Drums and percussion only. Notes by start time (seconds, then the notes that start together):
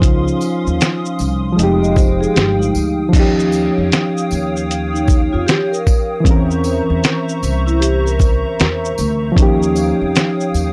0.02 kick, closed hi-hat, shaker
0.28 shaker
0.41 tambourine, shaker
0.67 shaker
0.81 snare, closed hi-hat, shaker
1.06 shaker
1.19 tambourine, shaker
1.59 closed hi-hat, shaker
1.84 shaker
1.96 kick, tambourine, shaker
2.23 shaker
2.36 snare, closed hi-hat, shaker
2.62 shaker
2.75 tambourine, shaker
3.13 kick, closed hi-hat, crash, shaker
3.40 shaker
3.52 tambourine, shaker
3.92 snare, closed hi-hat, shaker
4.17 shaker
4.31 tambourine, shaker
4.57 shaker
4.71 closed hi-hat, shaker
4.96 shaker
5.08 kick, tambourine, shaker
5.48 snare, closed hi-hat, shaker
5.74 shaker
5.87 kick, tambourine, shaker
6.25 kick, closed hi-hat, shaker
6.51 shaker
6.64 tambourine, shaker
7.04 snare, closed hi-hat, shaker
7.29 shaker
7.43 tambourine, shaker
7.68 shaker
7.82 closed hi-hat, shaker
8.07 shaker
8.19 kick, tambourine, shaker
8.60 snare, closed hi-hat, shaker
8.85 shaker
8.98 tambourine, shaker
9.37 kick, closed hi-hat, shaker
9.63 shaker
9.76 tambourine, shaker
10.16 snare, closed hi-hat, shaker
10.40 shaker
10.54 tambourine, shaker